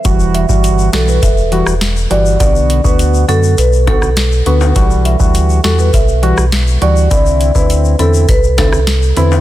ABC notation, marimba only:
X:1
M:4/4
L:1/16
Q:1/4=102
K:Em
V:1 name="Marimba"
z2 e z3 A B e3 z3 d z | d z2 B2 z A2 B z A z3 B z | z2 e z3 A B e3 z3 d z | d z2 B2 z A2 B z A z3 B z |]